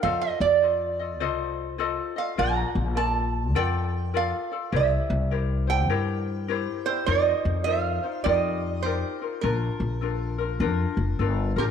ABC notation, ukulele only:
X:1
M:4/4
L:1/8
Q:"Swing" 1/4=102
K:Bb
V:1 name="Ukulele"
[FAce]2 [FAce] [FAe] [FAce]2 [FAce] [FAe] | [FBd]2 [FABd]2 [FABd]2 [FABd] [FAd] | [=EGBc]2 [EGBc] [EGc] [EGBc]2 [EGBc] [EGc] | [EFBc]2 [EFBc] [EFc] [EFGB]2 [EFGB] [EFB] |
[DFB]2 [DFAB] [DFB] [DFB]2 [DFAB] [DFB] |]